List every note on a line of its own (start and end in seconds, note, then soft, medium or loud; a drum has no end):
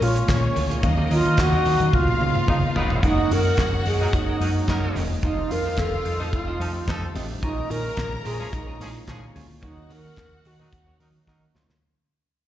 0.00 0.18 A#2 loud
0.00 0.81 G#3 medium
0.00 0.86 G#3 medium
0.00 0.81 A#3 medium
0.00 0.83 A#3 medium
0.00 0.83 C#4 loud
0.00 1.90 C#4 medium
0.00 0.81 C#4 medium
0.00 0.02 F4 loud
0.00 0.74 F4 medium
0.00 0.57 F4 medium
0.00 0.81 C#5 loud
0.00 open hi-hat medium
0.16 muted clean electric guitar stroke medium
0.16 closed hi-hat medium
0.27 0.46 A#2 loud
0.27 muted clean electric guitar stroke soft
0.27 kick loud
0.27 snare loud
0.27 clap medium
0.27 closed hi-hat medium
0.27 high conga medium
0.42 muted clean electric guitar stroke soft
0.55 0.73 D2 loud
0.55 0.69 A#3 medium
0.55 0.69 F4 medium
0.55 0.68 G#4 medium
0.55 0.68 C#5 loud
0.55 open hi-hat medium
0.55 muted conga soft
0.55 high conga medium
0.69 0.82 A#3 medium
0.69 0.81 F4 medium
0.69 0.81 G#4 medium
0.69 0.81 C#5 medium
0.69 closed hi-hat soft
0.82 1.00 D#2 loud
0.82 1.92 D#3 medium
0.82 1.80 F#3 loud
0.82 1.80 A#3 medium
0.82 1.92 A#3 medium
0.82 1.80 C#4 medium
0.82 1.91 D#4 medium
0.82 1.92 F#4 medium
0.82 1.91 D#5 medium
0.82 1.81 F5 loud
0.82 3.01 F5 medium
0.82 muted clean electric guitar stroke soft
0.82 kick loud
0.82 closed hi-hat medium
0.82 muted conga soft
0.82 low conga loud
0.97 1.09 C#4 medium
0.97 1.10 F#4 medium
0.97 1.10 A#4 medium
0.97 1.10 D#5 medium
0.97 high conga medium
1.10 1.20 D#3 medium
1.10 1.23 C#4 medium
1.10 1.42 F4 loud
1.10 1.24 F#4 medium
1.10 1.24 A#4 medium
1.10 1.24 D#5 medium
1.10 open hi-hat medium
1.10 muted conga soft
1.25 1.34 D#3 loud
1.25 muted clean electric guitar stroke soft
1.25 closed hi-hat soft
1.37 1.55 D#2 loud
1.37 1.97 F#4 loud
1.37 muted clean electric guitar stroke soft
1.37 kick loud
1.37 snare loud
1.37 clap loud
1.37 closed hi-hat medium
1.37 muted conga soft
1.37 high conga medium
1.52 1.64 C#4 medium
1.52 1.65 F#4 medium
1.52 1.65 A#4 medium
1.52 1.65 D#5 medium
1.52 high conga medium
1.65 1.75 D#3 loud
1.65 1.78 C#4 medium
1.65 1.78 F#4 medium
1.65 1.79 A#4 medium
1.65 1.79 D#5 medium
1.65 open hi-hat medium
1.65 muted conga soft
1.80 1.88 D#3 medium
1.80 closed hi-hat medium
1.80 low conga medium
1.92 2.11 C#2 loud
1.92 3.02 B2 medium
1.92 3.01 C#3 medium
1.92 3.02 G#3 medium
1.92 2.17 A#3 medium
1.92 2.17 B3 medium
1.92 3.02 D#4 medium
1.92 2.18 D#4 medium
1.92 3.01 F4 medium
1.92 2.18 F4 medium
1.92 2.77 F4 loud
1.92 3.01 A#4 medium
1.92 3.01 F5 medium
1.92 muted clean electric guitar stroke soft
1.92 kick loud
1.92 high tom medium
1.92 muted conga soft
2.07 muted clean electric guitar stroke soft
2.07 high tom medium
2.20 2.37 C#3 loud
2.20 2.93 A#3 medium
2.20 2.93 B3 medium
2.20 2.94 D#4 medium
2.20 2.94 F4 medium
2.20 muted conga soft
2.35 muted clean electric guitar stroke soft
2.35 mid tom medium
2.48 2.65 C#3 loud
2.48 2.58 F3 medium
2.48 2.58 D#4 medium
2.48 2.58 A#4 medium
2.48 kick loud
2.48 mid tom medium
2.48 muted conga soft
2.48 high conga medium
2.62 muted clean electric guitar stroke medium
2.75 2.93 F1 loud
2.75 3.12 F#3 medium
2.75 2.90 B3 medium
2.75 3.12 D#4 medium
2.75 2.90 F4 loud
2.75 2.89 A#4 loud
2.75 3.12 B4 loud
2.75 2.89 D#5 medium
2.75 floor tom loud
2.75 high conga medium
2.90 3.02 B3 medium
2.90 3.02 F4 medium
2.90 3.01 A#4 medium
2.90 3.01 D#5 medium
2.90 floor tom loud
3.02 3.20 F#1 medium
3.02 5.20 F#3 medium
3.02 4.00 G#3 medium
3.02 4.00 A#3 medium
3.02 3.19 C#4 medium
3.02 5.20 C#4 medium
3.02 4.01 C#4 medium
3.02 7.38 D#4 medium
3.02 4.01 D#4 medium
3.02 3.34 D#4 loud
3.02 4.91 F#4 medium
3.02 3.19 F#4 medium
3.02 5.20 G#4 medium
3.02 5.20 A#4 medium
3.02 3.19 A#4 medium
3.02 3.19 D#5 medium
3.02 4.92 F#5 loud
3.02 kick loud
3.02 closed hi-hat medium
3.02 muted conga soft
3.02 low conga medium
3.18 high conga medium
3.30 3.47 F#2 loud
3.30 3.43 C#4 medium
3.30 3.44 F#4 medium
3.30 3.44 A#4 medium
3.30 3.86 A#4 loud
3.30 3.44 D#5 medium
3.30 open hi-hat medium
3.30 muted conga soft
3.30 high conga medium
3.46 3.57 C#4 medium
3.46 3.57 F#4 medium
3.46 3.57 A#4 medium
3.46 3.57 D#5 medium
3.57 3.75 F#1 loud
3.57 muted clean electric guitar stroke soft
3.57 kick loud
3.57 snare loud
3.57 clap medium
3.57 closed hi-hat medium
3.57 muted conga soft
3.57 high conga medium
3.73 muted clean electric guitar stroke soft
3.73 high conga medium
3.86 4.03 F#2 loud
3.86 4.01 C#4 medium
3.86 4.01 F#4 medium
3.86 4.16 G#4 medium
3.86 4.01 A#4 medium
3.86 4.00 D#5 loud
3.86 open hi-hat medium
3.86 muted conga soft
4.00 4.09 F#3 medium
4.00 4.12 C#4 medium
4.00 4.09 D#4 medium
4.00 4.12 F#4 medium
4.00 4.09 A#4 medium
4.00 4.12 A#4 medium
4.00 4.12 D#5 medium
4.00 low conga medium
4.13 4.30 F#1 medium
4.13 4.96 D#4 medium
4.13 muted clean electric guitar stroke soft
4.13 kick loud
4.13 closed hi-hat medium
4.29 4.40 C#4 medium
4.29 4.41 F#4 medium
4.29 4.41 A#4 medium
4.29 4.41 D#5 medium
4.40 4.57 F#2 loud
4.40 4.50 F#3 medium
4.40 4.89 G#3 medium
4.40 4.89 A#3 medium
4.40 4.89 C#4 medium
4.40 4.48 D4 medium
4.40 4.50 D#4 medium
4.40 4.50 A#4 medium
4.40 muted clean electric guitar stroke soft
4.40 open hi-hat medium
4.40 muted conga soft
4.48 4.93 D#4 medium
4.56 muted clean electric guitar stroke soft
4.68 4.85 F#2 loud
4.68 5.04 F#3 medium
4.68 5.04 D#4 medium
4.68 5.04 A#4 loud
4.68 muted clean electric guitar stroke soft
4.68 kick loud
4.68 snare loud
4.68 clap medium
4.68 closed hi-hat medium
4.68 high conga medium
4.83 muted clean electric guitar stroke medium
4.95 5.13 E1 loud
4.95 5.19 G#3 medium
4.95 5.20 A#3 medium
4.95 5.11 C#4 medium
4.95 5.20 C#4 medium
4.95 5.20 D#4 medium
4.95 5.10 F#4 medium
4.95 5.10 A#4 medium
4.95 5.09 D#5 medium
4.95 open hi-hat medium
4.95 muted conga soft
4.95 high conga medium
4.95 low conga medium
5.11 muted clean electric guitar stroke soft
5.22 5.40 F1 medium
5.22 7.41 F3 medium
5.22 6.20 G3 medium
5.22 6.20 A3 medium
5.22 6.20 C4 medium
5.22 7.41 C4 medium
5.22 5.39 C4 medium
5.22 6.20 D#4 medium
5.22 5.53 D#4 loud
5.22 7.11 F4 medium
5.22 5.40 F4 medium
5.22 7.41 G4 medium
5.22 7.41 A4 medium
5.22 5.40 A4 medium
5.22 5.40 D#5 loud
5.22 7.11 F5 loud
5.22 kick loud
5.22 closed hi-hat medium
5.22 muted conga soft
5.22 low conga medium
5.38 high conga medium
5.50 5.68 F2 loud
5.50 5.63 C4 medium
5.50 5.64 F4 medium
5.50 5.64 A4 medium
5.50 5.80 A#4 loud
5.50 5.64 D#5 medium
5.50 open hi-hat medium
5.50 high conga medium
5.65 5.77 C4 medium
5.65 5.77 F4 medium
5.65 5.77 A4 medium
5.65 5.76 D#5 medium
5.77 5.95 F1 loud
5.77 6.33 A4 loud
5.77 kick loud
5.77 snare loud
5.77 clap loud
5.77 closed hi-hat medium
5.77 muted conga soft
5.77 high conga medium
5.92 muted clean electric guitar stroke soft
5.92 high conga medium
6.05 6.22 F2 loud
6.05 6.20 C4 medium
6.05 6.20 F4 medium
6.05 6.20 A4 medium
6.05 6.19 D#5 medium
6.05 open hi-hat medium
6.19 6.28 F3 medium
6.19 6.32 C4 medium
6.19 6.28 D#4 medium
6.19 6.32 F4 medium
6.19 6.28 A4 medium
6.19 6.32 A4 medium
6.19 6.31 D#5 medium
6.19 low conga medium
6.33 6.50 F1 loud
6.33 7.12 F4 medium
6.33 muted clean electric guitar stroke soft
6.33 kick loud
6.33 closed hi-hat medium
6.47 6.59 C4 medium
6.47 6.59 F4 medium
6.47 6.59 A4 medium
6.47 6.60 D#5 medium
6.60 6.77 F2 loud
6.60 6.69 F3 medium
6.60 7.09 G3 medium
6.60 7.09 A3 medium
6.60 7.09 C4 medium
6.60 6.69 D#4 medium
6.60 7.09 D#4 medium
6.60 6.69 A4 medium
6.60 open hi-hat medium
6.60 muted conga soft
6.75 muted clean electric guitar stroke soft
6.87 7.05 F2 loud
6.87 7.05 F3 medium
6.87 7.05 D#4 medium
6.87 7.05 A4 loud
6.87 kick loud
6.87 snare loud
6.87 clap medium
6.87 closed hi-hat medium
6.87 muted conga soft
6.87 high conga medium
7.02 muted clean electric guitar stroke soft
7.14 7.32 A1 loud
7.14 7.39 G3 medium
7.14 7.39 A3 medium
7.14 7.31 C4 medium
7.14 7.39 C4 medium
7.14 7.40 D4 medium
7.14 7.29 F4 loud
7.14 7.28 A4 loud
7.14 7.28 D#5 medium
7.14 open hi-hat medium
7.14 high conga medium
7.14 low conga medium
7.29 muted clean electric guitar stroke medium
7.42 7.60 A#1 medium
7.42 8.39 G#3 medium
7.42 9.61 G#3 medium
7.42 8.40 A#3 medium
7.42 11.79 A#3 medium
7.42 7.58 C#4 medium
7.42 8.40 C#4 medium
7.42 11.79 C#4 medium
7.42 7.72 D#4 loud
7.42 7.59 F4 medium
7.42 8.40 F4 medium
7.42 7.59 G#4 medium
7.42 9.31 A#4 medium
7.42 7.59 C#5 loud
7.42 9.31 A#5 loud
7.42 kick loud
7.42 closed hi-hat medium
7.42 muted conga soft
7.42 low conga medium
7.58 high conga medium
7.70 7.87 A#2 loud
7.70 7.83 C#4 medium
7.70 7.83 F4 medium
7.70 7.83 G#4 medium
7.70 8.24 A#4 loud
7.70 7.83 C#5 medium
7.70 open hi-hat medium
7.70 muted conga soft
7.70 high conga medium
7.85 7.97 C#4 soft
7.85 7.96 F4 medium
7.85 7.96 G#4 medium
7.85 7.96 C#5 medium
7.97 8.14 A#1 loud
7.97 muted clean electric guitar stroke soft
7.97 kick loud
7.97 snare loud
7.97 clap medium
7.97 closed hi-hat medium
7.97 muted conga soft
7.97 high conga medium
8.11 muted clean electric guitar stroke soft
8.11 high conga medium
8.24 8.42 A#2 loud
8.24 8.39 C#4 medium
8.24 8.39 F4 medium
8.24 8.54 G#4 medium
8.24 8.39 G#4 medium
8.24 8.38 C#5 medium
8.24 open hi-hat medium
8.39 8.48 F3 medium
8.39 8.48 C#4 medium
8.39 8.50 C#4 medium
8.39 8.51 F4 medium
8.39 8.48 G#4 medium
8.39 8.51 G#4 medium
8.39 8.51 C#5 medium
8.39 low conga medium
8.52 8.82 A#1 loud
8.52 9.35 D#4 medium
8.52 muted clean electric guitar stroke soft
8.52 kick loud
8.52 closed hi-hat medium
8.52 muted conga soft
8.66 8.79 C#4 medium
8.66 8.79 F4 medium
8.66 8.79 G#4 medium
8.66 8.79 C#5 medium
8.79 8.97 A#2 loud
8.79 8.90 F3 medium
8.79 9.28 G#3 medium
8.79 9.29 A#3 medium
8.79 8.90 C#4 medium
8.79 9.29 C#4 medium
8.79 8.87 E4 medium
8.79 8.89 G#4 loud
8.79 muted clean electric guitar stroke soft
8.79 open hi-hat medium
8.79 muted conga soft
8.87 9.32 F4 medium
8.94 muted clean electric guitar stroke soft
9.07 9.25 A#2 loud
9.07 9.25 F3 medium
9.07 9.25 C#4 medium
9.07 9.25 G#4 loud
9.07 muted clean electric guitar stroke soft
9.07 kick medium
9.07 snare loud
9.07 clap medium
9.07 closed hi-hat medium
9.07 muted conga soft
9.07 high conga medium
9.21 muted clean electric guitar stroke soft
9.34 9.52 D2 loud
9.34 9.59 G#3 medium
9.34 9.59 A#3 medium
9.34 9.59 C#4 medium
9.34 9.51 C#4 medium
9.34 9.59 F4 medium
9.34 9.49 F4 medium
9.34 9.48 G#4 medium
9.34 9.48 C#5 medium
9.34 open hi-hat medium
9.34 muted conga soft
9.34 high conga medium
9.34 low conga medium
9.50 muted clean electric guitar stroke soft
9.61 9.80 D#2 medium
9.61 11.80 D#3 medium
9.61 10.60 F#3 medium
9.61 9.78 A#3 medium
9.61 10.60 A#3 medium
9.61 10.60 C#4 medium
9.61 9.78 D#4 medium
9.61 11.80 D#4 medium
9.61 9.70 D#4 medium
9.61 9.94 D#4 loud
9.61 9.78 F#4 medium
9.61 11.80 F#4 medium
9.61 11.51 F#4 medium
9.61 9.79 C#5 medium
9.61 11.51 F#5 loud
9.61 kick loud
9.61 closed hi-hat medium
9.61 low conga medium
9.70 10.64 F#4 medium
9.78 high conga medium
9.89 10.07 D#3 medium
9.89 10.02 A#3 medium
9.89 10.02 D#4 medium
9.89 10.02 F#4 medium
9.89 10.48 A#4 loud
9.89 10.03 C#5 medium
9.89 open hi-hat medium
9.89 high conga medium
10.04 10.16 A#3 medium
10.04 10.16 D#4 medium
10.04 10.16 F#4 medium
10.04 10.16 C#5 medium
10.16 10.34 D#2 loud
10.16 kick loud
10.16 snare loud
10.16 clap loud
10.16 closed hi-hat medium
10.16 high conga medium
10.31 muted clean electric guitar stroke medium
10.31 high conga medium
10.44 10.62 D#3 loud
10.44 10.59 A#3 medium
10.44 10.59 D#4 medium
10.44 10.58 F#4 medium
10.44 11.28 F#4 medium
10.44 10.58 C#5 medium
10.44 open hi-hat medium
10.59 10.68 F#3 medium
10.59 10.71 A#3 medium
10.59 10.68 D#4 medium
10.59 10.71 D#4 medium
10.59 10.71 F#4 medium
10.59 10.68 A#4 medium
10.59 10.70 C#5 medium
10.59 low conga medium
10.72 10.90 D#2 loud
10.72 muted clean electric guitar stroke soft
10.72 kick loud
10.72 closed hi-hat medium
10.72 muted conga soft
10.86 10.99 A#3 medium
10.86 10.99 D#4 medium
10.86 10.99 F#4 medium
10.86 10.99 C#5 medium
10.98 11.17 D#3 medium
10.98 11.06 F3 medium
10.98 11.09 F#3 medium
10.98 11.48 A#3 medium
10.98 11.48 C#4 medium
10.98 11.09 D#4 medium
10.98 11.49 F#4 medium
10.98 11.09 A#4 medium
10.98 open hi-hat medium
10.98 muted conga soft
11.05 11.51 F#3 medium
11.13 muted clean electric guitar stroke soft
11.27 11.44 D#3 loud
11.27 11.45 F#3 medium
11.27 11.45 D#4 medium
11.27 11.45 A#4 loud
11.27 muted clean electric guitar stroke soft
11.27 kick loud
11.27 snare medium
11.27 muted conga soft
11.27 high conga medium
11.40 muted clean electric guitar stroke soft
11.54 11.72 D2 loud
11.54 11.79 F#3 medium
11.54 11.79 A#3 medium
11.54 11.75 A#3 medium
11.54 11.79 C#4 medium
11.54 11.69 D#4 medium
11.54 11.80 F4 medium
11.54 11.68 F#4 medium
11.54 11.68 C#5 medium
11.54 snare medium
11.54 high conga medium
11.54 low conga medium
11.69 muted clean electric guitar stroke soft
11.69 snare medium